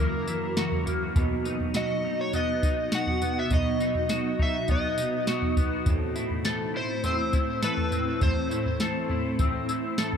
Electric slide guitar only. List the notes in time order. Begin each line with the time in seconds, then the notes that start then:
Already playing: A#4
1.77 D#5
2.21 C#5
2.36 D#5
2.95 F#5
3.39 E5
3.54 D#5
4.43 E5
4.72 D#5
6.77 C5
7.06 C5
7.64 B4
8.23 C5